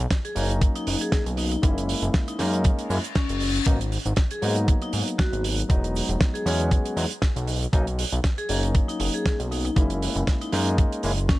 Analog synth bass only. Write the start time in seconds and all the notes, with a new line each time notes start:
0.36 F#1
0.87 F#1
1.26 B1
1.63 F#1
2.02 F#1
2.39 F#2
2.90 F#2
3.30 F#1
3.66 G#1
4.06 G#1
4.43 G#2
4.93 G#2
5.33 G#1
5.70 E1
6.09 E1
6.46 E2
6.97 E2
7.36 B1
7.73 B1
8.12 B1
8.49 F#1
9.00 F#1
9.40 B1
9.76 F#1
10.16 F#1
10.53 F#2
11.04 F#1